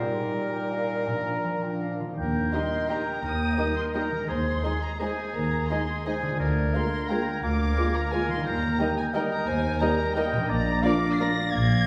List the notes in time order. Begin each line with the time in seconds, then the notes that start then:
Already playing: A#2 G3 D#4 A#4 G5
0.14 G4
0.33 G3 G5
0.53 G4
0.71 D#4 F5
0.90 G4
1.07 A#2 F3 D4 A#5
1.25 F4
1.44 F3
1.63 F4 G5
1.82 D4 F5
2.00 D#3 F4
2.04 A#3
2.09 D#4
2.13 G4 G6
2.17 D#2 A#4 G5
2.52 G3 A#3 D#4 G4 D#5 C6
2.88 G3 A#3 D#4 G4 A#4 D#5 G5 A#5 G6
3.23 D#2 A#4 D#6 G6
3.57 G3 A#3 D#4 G4 A#4 D#5
3.76 C6
3.93 G3 A#3 D#4 G4 A#4 D#5 A#5 G6
4.11 D#3
4.16 G#3
4.20 D#4
4.25 G#4 C6 G#6
4.29 D#2 G#4 C5
4.63 G#3 D#4 G#4 D#5
4.81 A#5
4.99 G#3 D#4 G#4 C5 D#5 G#5 G#6
5.34 D#2 A#4 A#5
5.69 G#3 D#4 G#4 D#5 C6 G#6
6.05 G#3 D#4 G#4 C5 D#5 G#5 G#6
6.22 D3
6.26 G#3
6.31 F4
6.35 A#4
6.40 D2 D5 G#6
6.74 G#3 A#3 F4 A#4 F5 C6
7.08 G#3 A#3 F4 A#4 G5 A#5 G#6
7.43 D2 A#4 F5 D6 G#6
7.76 G#3 A#3 F4 A#4
7.94 A#5
8.11 G#3 A#3 F4 A#4 F5 G#5 G#6
8.28 D#3 C6
8.32 G3
8.37 D#4
8.41 A#4
8.45 D#2 A#4 A#5 G6
8.78 G3 A#3 D#4 A#4 D#5 G5
8.96 G#5
9.14 G3 A#3 D#4 A#4 D#5 G5 G6
9.31 A#5
9.47 D#2 C5 G#5
9.80 G3 A#3 D#4 A#4 D#5 A#5 G6
10.15 G3 A#3 D#4 A#4 D#5 G5 G6
10.32 A#2
10.36 F3
10.41 D4
10.45 A#4 D5 A#5
10.49 A#1 A#2 D5 A#6
10.82 A#3 D4 F4 A#4 D5 F5 D6 A#6
11.13 C7
11.18 A#3 D4 F4 A#4 D5 A#6
11.52 A#1 A#2 D5 F5 G#6 A#6